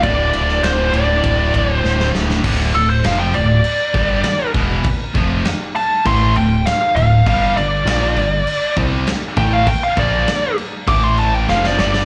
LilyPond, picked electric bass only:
\new Staff \with { instrumentName = "Picked electric bass" } { \clef bass \time 4/4 \key c \major \tempo 4 = 100 d,,8 d,,8 d,,8 d,,8 d,,8 d,,8 d,,8 d,,8 | \key d \minor d,,8 d,,8 f,,8 d,,8 r8 g,,8 r8 e,,8 | r8 f,,8 r4 a,,8 d,,8 r8 d,,8 | g,,8 g,,8 bes,,8 g,,8 r8 c,8 r8 a,,8 |
r8 bes,,8 r4 a,,4 f,,8 g,,8 | }